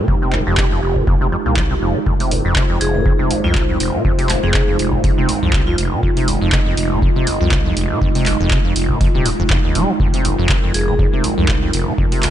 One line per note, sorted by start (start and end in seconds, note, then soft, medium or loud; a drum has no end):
0.00 12.30 G#3 medium
0.00 12.30 D#4 medium
0.00 12.30 F4 medium
0.00 2.05 G4 medium
0.08 0.41 F1 loud
0.08 0.16 F2 medium
0.08 kick loud
0.22 0.35 C3 medium
0.33 0.44 F1 medium
0.33 clap medium
0.47 0.78 F1 medium
0.47 0.56 F2 loud
0.57 0.65 C3 medium
0.57 kick loud
0.57 clap loud
0.72 0.81 F2 medium
0.83 1.16 F1 medium
0.83 0.98 F1 medium
0.96 1.05 C3 medium
0.96 kick medium
1.07 1.15 F2 medium
1.07 kick loud
1.21 1.29 F1 medium
1.21 1.27 C3 medium
1.32 1.37 F2 medium
1.46 1.77 C2 loud
1.46 1.55 A#2 medium
1.57 1.62 F3 loud
1.57 kick loud
1.57 clap loud
1.71 1.74 C3 medium
1.82 1.92 F1 medium
1.82 1.97 F2 medium
1.96 1.99 G#3 medium
2.07 2.40 F1 loud
2.07 2.14 F2 medium
2.07 6.02 C5 medium
2.07 kick loud
2.20 2.33 C3 medium
2.20 open hi-hat medium
2.31 2.43 F1 medium
2.31 open hi-hat loud
2.45 2.77 F1 medium
2.45 2.54 F2 loud
2.56 2.64 C3 medium
2.56 kick loud
2.56 clap loud
2.70 2.79 F2 medium
2.81 2.96 F1 medium
2.81 3.14 F1 medium
2.81 2.90 G#4 medium
2.81 open hi-hat medium
2.95 3.04 C3 loud
2.95 3.02 G#4 medium
3.06 3.13 F2 medium
3.06 kick loud
3.19 3.28 F1 medium
3.19 3.32 C3 medium
3.31 3.42 F1 medium
3.31 open hi-hat medium
3.44 3.76 C2 medium
3.44 3.53 F2 loud
3.44 3.54 F4 medium
3.55 3.63 C3 medium
3.55 kick loud
3.55 clap loud
3.69 3.78 F2 medium
3.80 3.95 F1 medium
3.80 3.91 F1 medium
3.80 open hi-hat loud
3.94 4.03 C3 loud
4.05 4.38 F1 loud
4.05 4.12 F2 medium
4.05 kick loud
4.19 4.31 C3 medium
4.19 open hi-hat medium
4.29 4.41 F1 medium
4.29 clap medium
4.29 open hi-hat medium
4.43 4.75 F1 medium
4.43 4.53 F2 loud
4.43 4.50 G#4 medium
4.54 4.62 C3 medium
4.54 4.63 G#4 medium
4.54 kick loud
4.54 clap loud
4.68 4.77 F2 medium
4.79 4.94 F1 medium
4.79 5.12 F1 medium
4.79 open hi-hat medium
4.93 5.02 C3 loud
4.93 kick medium
5.04 5.12 F2 medium
5.04 kick loud
5.04 open hi-hat medium
5.18 5.26 F1 medium
5.18 5.30 C3 medium
5.29 5.40 F1 medium
5.29 open hi-hat loud
5.43 5.74 C2 loud
5.43 5.52 F2 loud
5.53 5.61 C3 medium
5.53 kick loud
5.53 clap loud
5.67 5.76 F2 medium
5.67 6.03 F4 medium
5.78 5.93 F1 medium
5.78 5.89 F1 medium
5.78 open hi-hat medium
5.92 6.01 C3 loud
6.03 6.36 F1 loud
6.03 6.11 F2 medium
6.03 9.99 D#5 medium
6.03 kick loud
6.17 6.29 C3 medium
6.17 open hi-hat medium
6.28 6.39 F1 medium
6.28 open hi-hat loud
6.41 6.73 F1 medium
6.41 6.51 F2 loud
6.52 6.60 C3 medium
6.52 kick loud
6.52 clap loud
6.66 6.76 F2 medium
6.77 6.93 F1 medium
6.77 7.11 F1 medium
6.77 open hi-hat medium
6.91 7.00 C3 loud
7.02 7.10 F2 medium
7.02 kick loud
7.16 7.25 F1 medium
7.16 7.28 C3 medium
7.27 7.38 F1 medium
7.27 open hi-hat medium
7.41 7.72 C2 medium
7.41 7.50 F2 loud
7.51 7.59 C3 medium
7.51 kick loud
7.51 clap loud
7.65 7.75 F2 medium
7.77 7.92 F1 medium
7.77 7.87 F1 medium
7.77 open hi-hat medium
7.90 8.00 C3 loud
8.02 8.35 F1 loud
8.02 8.09 F2 medium
8.02 kick loud
8.15 8.28 C3 medium
8.15 open hi-hat medium
8.26 8.38 F1 medium
8.26 clap medium
8.26 open hi-hat medium
8.40 8.72 F1 medium
8.40 8.49 F2 loud
8.51 8.59 C3 medium
8.51 kick loud
8.51 clap loud
8.65 8.74 F2 medium
8.76 8.91 F1 medium
8.76 9.09 F1 medium
8.76 open hi-hat medium
8.90 8.99 C3 loud
8.90 kick medium
9.01 9.08 F2 medium
9.01 kick loud
9.01 open hi-hat medium
9.14 9.33 D#1 loud
9.14 9.27 C3 medium
9.26 9.30 F2 medium
9.26 open hi-hat medium
9.39 9.71 F1 loud
9.39 9.43 F2 loud
9.50 9.58 F2 medium
9.50 kick loud
9.50 clap loud
9.64 9.77 D#2 medium
9.75 9.86 D#1 loud
9.75 9.91 G#3 loud
9.75 open hi-hat medium
9.89 9.93 D#3 medium
10.00 10.33 F1 medium
10.00 10.08 F2 medium
10.00 12.30 A#4 medium
10.00 kick loud
10.14 10.26 C3 medium
10.14 open hi-hat medium
10.25 10.36 F1 medium
10.25 open hi-hat loud
10.39 10.70 F1 medium
10.39 10.48 F2 medium
10.49 10.57 C3 medium
10.49 kick loud
10.49 clap loud
10.63 10.72 F2 medium
10.74 10.90 F1 medium
10.74 11.08 F1 medium
10.74 10.83 G#4 medium
10.74 open hi-hat medium
10.88 10.94 F3 medium
10.88 10.95 G#4 medium
10.99 11.07 F2 medium
10.99 kick loud
11.13 11.21 F1 medium
11.13 11.26 C3 medium
11.24 11.35 F1 medium
11.24 open hi-hat loud
11.38 11.69 C2 medium
11.38 11.47 F2 loud
11.48 11.56 C3 medium
11.48 kick loud
11.48 clap loud
11.62 11.72 F2 medium
11.73 11.89 F1 medium
11.73 11.84 F1 medium
11.73 open hi-hat loud
11.87 11.93 F3 medium
11.98 12.30 F1 loud
11.98 12.06 F2 medium
11.98 kick loud
12.12 12.25 C3 medium
12.12 open hi-hat medium
12.23 12.30 F1 medium
12.23 12.30 F4 medium
12.23 clap medium
12.23 open hi-hat loud